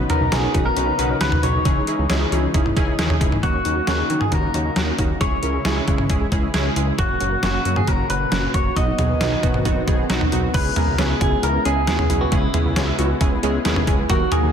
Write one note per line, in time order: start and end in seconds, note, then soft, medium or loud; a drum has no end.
0.00 3.39 C#3 medium
0.00 1.62 F#3 medium
0.00 1.61 B3 medium
0.00 3.40 D#4 medium
0.10 0.16 C#4 medium
0.10 0.27 C#4 medium
0.10 0.27 D#4 medium
0.10 0.27 F#4 medium
0.10 0.33 A#4 medium
0.10 0.27 B4 medium
0.10 closed hi-hat medium
0.10 mid tom medium
0.21 0.29 B1 loud
0.21 0.28 D#4 medium
0.32 0.48 B1 loud
0.32 0.49 C#4 medium
0.32 0.49 D#4 medium
0.32 0.49 F#4 medium
0.32 0.66 G#4 medium
0.32 0.49 A#4 medium
0.32 0.39 B4 medium
0.32 snare loud
0.32 closed hi-hat medium
0.43 0.50 C#5 medium
0.54 0.70 B1 loud
0.54 0.61 D#3 medium
0.54 0.71 C#4 medium
0.54 0.71 D#4 medium
0.54 0.71 F#4 medium
0.54 0.71 B4 medium
0.54 kick loud
0.54 closed hi-hat medium
0.54 cowbell medium
0.66 0.72 B3 medium
0.66 1.17 A#4 medium
0.77 0.92 B1 loud
0.77 0.83 C#4 loud
0.77 0.94 C#4 medium
0.77 0.94 D#4 medium
0.77 0.94 F#4 medium
0.77 0.94 B4 medium
0.77 closed hi-hat medium
0.88 0.94 D#4 medium
0.99 1.14 B1 loud
0.99 1.16 C#4 loud
0.99 1.16 D#4 medium
0.99 1.16 F#4 medium
0.99 1.16 B4 loud
0.99 1.05 B4 medium
0.99 closed hi-hat medium
1.10 1.17 C#5 medium
1.21 1.37 C#2 loud
1.21 1.28 D#3 medium
1.21 1.38 C#4 loud
1.21 1.38 D#4 medium
1.21 1.38 F#4 medium
1.21 1.38 B4 loud
1.21 1.43 B4 loud
1.21 snare loud
1.21 closed hi-hat medium
1.32 1.39 B3 medium
1.32 mid tom loud
1.43 1.59 B1 medium
1.43 1.50 C#4 medium
1.43 1.60 C#4 medium
1.43 1.60 D#4 medium
1.43 1.60 F#4 medium
1.43 1.60 B4 medium
1.43 2.95 C#5 loud
1.43 closed hi-hat medium
1.54 1.61 D#4 medium
1.65 1.81 C#2 loud
1.65 3.41 E3 medium
1.65 1.72 E3 loud
1.65 3.41 G#3 medium
1.65 1.82 C#4 loud
1.65 1.82 D#4 medium
1.65 1.82 E4 medium
1.65 1.82 G#4 loud
1.65 kick loud
1.65 closed hi-hat medium
1.76 1.83 C#4 medium
1.87 2.05 C#4 medium
1.87 1.94 D#4 medium
1.87 2.05 D#4 medium
1.87 2.05 E4 medium
1.87 2.05 G#4 medium
1.87 closed hi-hat medium
1.99 2.07 C#2 loud
1.99 2.05 E4 medium
2.10 2.25 C#2 loud
2.10 2.27 C#4 loud
2.10 2.27 D#4 medium
2.10 2.27 E4 medium
2.10 2.27 G#4 loud
2.10 2.17 C#5 medium
2.10 snare loud
2.10 closed hi-hat medium
2.21 2.28 D#5 medium
2.32 2.48 C#2 loud
2.32 2.39 E3 medium
2.32 2.49 C#4 medium
2.32 2.49 D#4 medium
2.32 2.49 E4 medium
2.32 2.49 G#4 loud
2.32 closed hi-hat medium
2.32 cowbell medium
2.43 2.50 C#4 medium
2.54 2.70 C#2 loud
2.54 2.71 C#4 medium
2.54 2.61 D#4 loud
2.54 2.71 D#4 medium
2.54 2.71 E4 medium
2.54 2.71 G#4 loud
2.54 kick medium
2.54 closed hi-hat medium
2.65 2.72 E4 medium
2.65 mid tom medium
2.76 2.92 C#2 loud
2.76 2.94 C#4 loud
2.76 2.94 D#4 loud
2.76 2.94 E4 loud
2.76 2.94 G#4 loud
2.76 2.83 C#5 medium
2.76 kick loud
2.76 closed hi-hat medium
2.87 2.94 D#5 medium
2.99 3.14 D#2 medium
2.99 3.05 E3 medium
2.99 3.16 C#4 loud
2.99 3.16 D#4 loud
2.99 3.16 E4 loud
2.99 3.16 G#4 loud
2.99 snare loud
2.99 closed hi-hat medium
3.10 3.16 C#4 medium
3.10 mid tom loud
3.21 3.37 C#2 medium
3.21 3.38 C#4 medium
3.21 3.28 D#4 medium
3.21 3.38 D#4 medium
3.21 3.38 E4 medium
3.21 3.38 G#4 loud
3.21 kick medium
3.21 closed hi-hat medium
3.32 3.39 E4 medium
3.32 mid tom medium
3.43 3.59 D#2 loud
3.43 8.72 C#3 medium
3.43 3.50 F#3 medium
3.43 5.19 F#3 medium
3.43 3.60 A#3 loud
3.43 5.19 A#3 medium
3.43 3.60 C#4 medium
3.43 5.19 D#4 medium
3.43 3.60 D#4 medium
3.43 3.86 F#4 medium
3.43 3.60 F#4 loud
3.43 kick loud
3.43 closed hi-hat medium
3.54 3.61 C#4 medium
3.65 3.81 D#2 loud
3.65 3.82 A#3 medium
3.65 3.82 C#4 medium
3.65 3.72 D#4 medium
3.65 3.82 D#4 medium
3.65 3.82 F#4 medium
3.65 closed hi-hat medium
3.76 3.83 F#4 medium
3.87 4.03 D#2 loud
3.87 4.05 A#3 loud
3.87 4.05 C#4 medium
3.87 4.05 D#4 medium
3.87 4.21 F#4 medium
3.87 4.05 G#4 loud
3.87 3.94 C#5 medium
3.87 snare loud
3.87 closed hi-hat medium
4.10 4.25 D#3 loud
4.10 4.16 F#3 medium
4.10 4.27 A#3 medium
4.10 4.27 C#4 medium
4.10 4.27 D#4 medium
4.10 4.27 F#4 medium
4.10 closed hi-hat medium
4.21 4.27 C#4 medium
4.21 4.32 G#4 medium
4.21 mid tom medium
4.32 4.48 D#2 loud
4.32 4.49 A#3 medium
4.32 4.49 C#4 medium
4.32 4.39 D#4 medium
4.32 4.49 D#4 medium
4.32 4.49 F#4 medium
4.32 5.21 A#4 medium
4.32 kick medium
4.32 closed hi-hat medium
4.43 4.50 F#4 medium
4.54 4.70 D#2 loud
4.54 4.71 A#3 medium
4.54 4.71 C#4 medium
4.54 4.71 D#4 medium
4.54 4.71 F#4 medium
4.54 4.61 C#5 medium
4.54 closed hi-hat medium
4.65 4.72 D#5 medium
4.76 4.92 D#2 loud
4.76 4.83 F#3 medium
4.76 4.93 A#3 medium
4.76 4.93 C#4 medium
4.76 4.94 D#4 medium
4.76 4.94 F#4 loud
4.76 snare loud
4.76 closed hi-hat medium
4.87 4.94 C#4 medium
4.99 5.14 D#2 loud
4.99 5.16 A#3 medium
4.99 5.16 C#4 medium
4.99 5.05 D#4 medium
4.99 5.16 D#4 medium
4.99 5.16 F#4 loud
4.99 kick medium
4.99 closed hi-hat medium
5.10 5.16 F#4 medium
5.20 5.36 C#2 loud
5.20 6.97 E3 medium
5.20 6.97 G#3 medium
5.20 5.27 G#3 medium
5.20 5.38 G#3 loud
5.20 5.38 C#4 medium
5.20 6.97 E4 medium
5.20 5.38 E4 medium
5.20 5.38 G#4 loud
5.20 6.06 C#5 loud
5.20 kick loud
5.20 closed hi-hat medium
5.32 5.39 C#4 medium
5.43 5.59 C#2 medium
5.43 5.60 G#3 medium
5.43 5.60 C#4 medium
5.43 5.50 E4 medium
5.43 5.60 E4 medium
5.43 5.60 A#4 medium
5.43 closed hi-hat medium
5.54 5.61 G#4 medium
5.65 5.81 C#2 loud
5.65 5.82 G#3 loud
5.65 5.82 C#4 medium
5.65 5.82 E4 medium
5.65 5.82 G#4 loud
5.65 5.72 C#5 medium
5.65 snare loud
5.65 closed hi-hat medium
5.76 5.83 E5 medium
5.87 6.11 C#3 medium
5.87 5.94 G#3 medium
5.87 6.05 G#3 medium
5.87 6.05 C#4 medium
5.87 6.05 E4 medium
5.87 6.05 G#4 loud
5.87 kick medium
5.87 closed hi-hat medium
5.98 6.05 C#4 medium
5.98 mid tom loud
6.10 6.25 C#2 loud
6.10 6.27 G#3 medium
6.10 6.27 C#4 medium
6.10 6.16 E4 medium
6.10 6.27 E4 medium
6.10 6.27 G#4 loud
6.10 kick medium
6.10 closed hi-hat medium
6.21 6.27 G#4 medium
6.32 6.48 C#2 loud
6.32 6.49 G#3 medium
6.32 6.49 C#4 medium
6.32 6.49 E4 medium
6.32 6.49 G#4 loud
6.32 6.39 C#5 medium
6.32 kick medium
6.32 closed hi-hat medium
6.43 6.50 E5 medium
6.54 6.70 C#2 loud
6.54 6.71 G#3 loud
6.54 6.61 G#3 medium
6.54 6.71 C#4 loud
6.54 6.71 E4 loud
6.54 6.71 G#4 loud
6.54 snare loud
6.54 closed hi-hat medium
6.65 6.72 C#4 medium
6.76 6.92 C#2 medium
6.76 6.93 G#3 medium
6.76 6.93 C#4 medium
6.76 6.83 E4 medium
6.76 6.93 E4 medium
6.76 6.93 G#4 loud
6.76 closed hi-hat medium
6.87 6.94 G#4 medium
6.98 7.14 F#1 loud
6.98 8.75 A#2 medium
6.98 7.16 F#3 loud
6.98 8.75 F#3 medium
6.98 7.05 A#3 medium
6.98 7.16 A#3 medium
6.98 7.16 C#4 medium
6.98 7.16 F#4 loud
6.98 10.51 F#4 medium
6.98 7.42 F#4 medium
6.98 kick loud
6.98 closed hi-hat medium
7.10 7.16 C#4 medium
7.21 7.36 F#1 loud
7.21 7.38 F#3 medium
7.21 7.38 A#3 medium
7.21 7.38 C#4 medium
7.21 7.27 F#4 medium
7.21 7.38 F#4 medium
7.21 closed hi-hat medium
7.32 7.39 A#4 medium
7.43 7.59 F#1 loud
7.43 7.60 F#3 loud
7.43 7.60 A#3 medium
7.43 7.60 C#4 medium
7.43 7.60 F#4 loud
7.43 7.74 F#4 medium
7.43 7.50 C#5 medium
7.43 snare loud
7.43 closed hi-hat medium
7.54 7.61 F#5 medium
7.65 7.81 F#2 loud
7.65 7.82 F#3 medium
7.65 7.82 A#3 medium
7.65 7.72 A#3 medium
7.65 7.82 C#4 medium
7.65 7.82 F#4 medium
7.65 closed hi-hat medium
7.76 7.83 C#4 medium
7.76 7.88 G#4 medium
7.76 mid tom medium
7.87 8.03 F#1 loud
7.87 8.05 F#3 medium
7.87 8.04 A#3 medium
7.87 8.05 C#4 medium
7.87 7.94 F#4 loud
7.87 8.05 F#4 medium
7.87 8.10 A#4 medium
7.87 kick medium
7.87 closed hi-hat medium
7.99 8.05 A#4 medium
8.10 8.25 F#1 medium
8.10 8.27 F#3 medium
8.10 8.27 A#3 medium
8.10 8.27 C#4 medium
8.10 8.27 F#4 medium
8.10 8.51 B4 loud
8.10 8.17 C#5 medium
8.10 closed hi-hat medium
8.21 8.28 F#5 medium
8.32 8.48 F#1 loud
8.32 8.49 F#3 medium
8.32 8.49 A#3 medium
8.32 8.39 A#3 medium
8.32 8.49 C#4 medium
8.32 8.49 F#4 loud
8.32 snare loud
8.32 closed hi-hat medium
8.43 8.50 C#4 medium
8.54 8.70 F#1 loud
8.54 8.71 F#3 medium
8.54 8.71 A#3 medium
8.54 8.71 C#4 medium
8.54 8.71 F#4 medium
8.54 8.61 F#4 medium
8.54 8.76 C#5 loud
8.54 kick medium
8.54 closed hi-hat medium
8.65 8.72 A#4 medium
8.76 8.92 B1 loud
8.76 10.52 D#3 medium
8.76 8.93 F#3 loud
8.76 10.52 F#3 medium
8.76 10.52 B3 medium
8.76 8.93 B3 medium
8.76 8.83 B3 medium
8.76 8.93 D#4 medium
8.76 8.93 F#4 loud
8.76 10.06 D#5 loud
8.76 kick loud
8.76 closed hi-hat medium
8.76 swell medium
8.87 8.94 D#4 medium
8.98 9.14 B1 loud
8.98 9.16 F#3 medium
8.98 9.16 B3 medium
8.98 9.16 D#4 medium
8.98 9.05 F#4 medium
8.98 9.16 G#4 medium
8.98 closed hi-hat medium
8.98 mid tom medium
9.10 9.16 B4 medium
9.21 9.36 B1 loud
9.21 9.38 F#3 loud
9.21 9.38 B3 medium
9.21 9.38 D#4 medium
9.21 9.38 G#4 loud
9.21 9.27 D#5 medium
9.21 snare loud
9.21 closed hi-hat medium
9.32 9.39 F#5 medium
9.43 9.67 B2 loud
9.43 9.60 F#3 medium
9.43 9.50 B3 medium
9.43 9.60 B3 medium
9.43 9.60 D#4 medium
9.43 9.60 F#4 loud
9.43 kick medium
9.43 closed hi-hat medium
9.54 9.61 D#4 medium
9.54 mid tom medium
9.65 9.81 B1 loud
9.65 9.82 F#3 medium
9.65 9.82 B3 medium
9.65 9.82 D#4 medium
9.65 9.72 F#4 loud
9.65 9.82 F#4 loud
9.65 kick medium
9.65 closed hi-hat medium
9.76 9.83 B4 medium
9.87 10.03 B1 loud
9.87 10.05 F#3 medium
9.87 10.05 B3 medium
9.87 10.05 D#4 medium
9.87 10.05 G#4 loud
9.87 9.94 D#5 medium
9.87 kick medium
9.87 closed hi-hat medium
9.99 10.05 F#5 medium
10.10 10.25 B1 loud
10.10 10.27 F#3 loud
10.10 10.16 B3 medium
10.10 10.27 B3 loud
10.10 10.27 D#4 loud
10.10 10.27 F#4 loud
10.10 snare loud
10.10 closed hi-hat medium
10.21 10.28 D#4 medium
10.21 mid tom loud
10.32 10.48 B1 loud
10.32 10.49 F#3 medium
10.32 10.49 B3 medium
10.32 10.49 D#4 medium
10.32 10.39 F#4 medium
10.32 10.49 F#4 loud
10.32 closed hi-hat medium
10.43 10.50 B4 medium
10.54 10.70 C#2 loud
10.54 14.06 C#3 medium
10.54 14.06 G#3 medium
10.54 10.71 G#3 loud
10.54 14.06 B3 medium
10.54 10.61 B3 loud
10.54 10.71 B3 medium
10.54 10.71 C#4 medium
10.54 14.06 E4 medium
10.54 10.71 E4 medium
10.54 10.71 G#4 loud
10.54 10.75 B4 loud
10.54 kick loud
10.54 closed hi-hat medium
10.54 crash loud
10.65 10.72 C#4 medium
10.76 10.93 G#3 medium
10.76 10.93 B3 medium
10.76 10.93 C#4 medium
10.76 10.83 E4 medium
10.76 10.93 E4 medium
10.76 10.93 G#4 medium
10.76 11.00 A#4 loud
10.76 closed hi-hat medium
10.76 mid tom medium
10.87 10.95 C#2 loud
10.87 10.94 B4 medium
10.98 11.14 C#2 loud
10.98 11.16 G#3 medium
10.98 11.16 B3 medium
10.98 11.16 C#4 medium
10.98 11.16 E4 medium
10.98 11.20 G#4 loud
10.98 11.16 B4 medium
10.98 11.05 C#5 medium
10.98 snare loud
10.98 closed hi-hat medium
11.10 11.16 E5 medium
11.21 11.37 C#2 loud
11.21 11.38 G#3 medium
11.21 11.28 B3 medium
11.21 11.38 B3 medium
11.21 11.38 C#4 medium
11.21 11.38 E4 medium
11.21 11.38 G#4 medium
11.21 11.44 G#4 loud
11.21 kick loud
11.21 closed hi-hat medium
11.21 cowbell medium
11.32 11.39 C#4 medium
11.43 11.59 C#2 loud
11.43 11.60 G#3 medium
11.43 11.60 B3 medium
11.43 11.60 C#4 medium
11.43 11.50 E4 loud
11.43 11.60 E4 medium
11.43 11.60 A#4 medium
11.43 11.64 A#4 loud
11.43 closed hi-hat medium
11.54 11.61 B4 medium
11.65 11.89 C#2 loud
11.65 11.82 G#3 loud
11.65 11.82 B3 medium
11.65 11.82 C#4 medium
11.65 11.82 E4 medium
11.65 11.82 G#4 loud
11.65 12.23 G#4 loud
11.65 11.72 C#5 medium
11.65 closed hi-hat medium
11.76 11.83 E5 medium
11.87 12.03 D#2 loud
11.87 12.05 G#3 loud
11.87 11.94 B3 medium
11.87 12.05 B3 medium
11.87 12.05 C#4 medium
11.87 12.05 E4 medium
11.87 12.05 G#4 loud
11.87 snare loud
11.87 closed hi-hat medium
11.99 12.05 C#4 medium
11.99 mid tom loud
12.10 12.25 B1 loud
12.10 12.27 G#3 medium
12.10 12.27 B3 medium
12.10 12.27 C#4 medium
12.10 12.16 E4 medium
12.10 12.27 E4 medium
12.10 12.27 G#4 medium
12.10 closed hi-hat medium
12.21 12.32 F#4 medium
12.21 12.28 B4 medium
12.32 12.48 C#2 loud
12.32 12.49 G#3 loud
12.32 12.49 B3 medium
12.32 12.39 B3 loud
12.32 12.49 C#4 medium
12.32 13.88 E4 medium
12.32 12.49 E4 medium
12.32 12.49 G#4 loud
12.32 kick loud
12.32 closed hi-hat medium
12.43 12.50 C#4 medium
12.54 12.71 G#3 medium
12.54 12.71 B3 medium
12.54 12.71 C#4 medium
12.54 12.71 E4 medium
12.54 12.61 E4 medium
12.54 12.71 G#4 medium
12.54 closed hi-hat medium
12.54 mid tom medium
12.65 12.73 C#2 loud
12.65 12.72 B4 medium
12.76 12.92 C#2 loud
12.76 12.93 G#3 medium
12.76 12.93 B3 medium
12.76 12.93 C#4 medium
12.76 12.93 E4 medium
12.76 12.93 G#4 medium
12.76 12.83 C#5 loud
12.76 snare loud
12.76 closed hi-hat medium
12.87 12.94 E5 medium
12.99 13.14 C#2 loud
12.99 13.16 G#3 medium
12.99 13.05 B3 medium
12.99 13.16 B3 medium
12.99 13.16 C#4 medium
12.99 13.16 E4 medium
12.99 13.16 F#4 loud
12.99 closed hi-hat medium
12.99 cowbell medium
13.09 13.16 C#4 medium
13.21 13.36 C#2 loud
13.21 13.38 G#3 medium
13.21 13.38 B3 medium
13.21 13.38 C#4 medium
13.21 13.27 E4 loud
13.21 13.38 E4 medium
13.21 13.38 G#4 loud
13.21 kick medium
13.21 closed hi-hat medium
13.32 13.39 B4 medium
13.43 13.59 C#2 loud
13.43 13.60 G#3 loud
13.43 13.60 B3 loud
13.43 13.60 C#4 loud
13.43 13.60 E4 loud
13.43 13.60 G#4 loud
13.43 13.50 C#5 medium
13.43 closed hi-hat medium
13.54 13.61 E5 medium
13.65 13.89 D#2 loud
13.65 13.82 G#3 loud
13.65 13.72 B3 medium
13.65 13.82 B3 loud
13.65 13.82 C#4 loud
13.65 13.82 E4 loud
13.65 13.82 G#4 loud
13.65 snare loud
13.65 closed hi-hat medium
13.76 13.83 C#4 medium
13.76 mid tom loud
13.87 14.03 C#2 medium
13.87 14.04 G#3 medium
13.87 14.04 B3 medium
13.87 14.05 C#4 medium
13.87 13.94 E4 medium
13.87 14.05 E4 medium
13.87 14.05 G#4 loud
13.87 kick medium
13.87 closed hi-hat medium
13.98 14.05 B4 medium
14.10 14.25 D#2 loud
14.10 14.52 D#3 medium
14.10 14.52 F#3 medium
14.10 14.27 F#3 loud
14.10 14.16 A#3 loud
14.10 14.27 A#3 medium
14.10 14.52 A#3 medium
14.10 14.27 D#4 medium
14.10 14.52 F#4 medium
14.10 14.27 F#4 medium
14.10 14.33 F#4 loud
14.10 14.27 A#4 loud
14.10 kick loud
14.10 closed hi-hat medium
14.21 14.27 D#4 medium
14.32 14.49 F#3 medium
14.32 14.49 A#3 medium
14.32 14.49 D#4 medium
14.32 14.39 F#4 medium
14.32 14.49 F#4 medium
14.32 14.52 G#4 loud
14.32 14.49 A#4 medium
14.32 closed hi-hat medium
14.32 mid tom medium
14.43 14.51 D#2 loud
14.43 14.50 A#4 medium